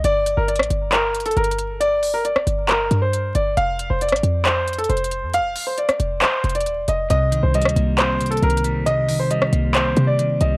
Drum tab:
HH |x-----------x-----------x---x---x---x-----------x-----------x--x--x--x--x---x---x---x-----------|x-----------o-----------x-----------x-----------x-----------x-----------x-----------x-----------|x-----------x-----------x---x---x---x-----------x-----------x--x--x--x--x---x---x---x-----------|x-----------o-----------x-----x-----x-----------x-----------x--x--x--x--x-----------x-----------|
CP |------------------------------------------------x-----------------------------------------------|------------------------------------------------x-----------------------------------------------|------------------------------------------------x-----------------------------------------------|------------------------------------------------x-----------------------------------------------|
SD |------------------------------r-----------------r-----------------------------------------------|------------------------------r-----------------r-----------------------------------------------|------------------------------r-----------------r-----------------------------------------------|------------------------------r-----------------r-----------------------------------------------|

HH |x-----------x-----------x---x---x---x-----------x-----------x--x--x--x--x---x---x---x-----------|x-----------o-----------x-----------x-----------x-----------x-----------x-----------x-----------|
CP |------------------------------------------------x-----------------------------------------------|------------------------------------------------x-----------------------------------------------|
SD |------------------------------r-----------------r-----------------------------------------------|------------------------------r-----------------r-----------------------------------------------|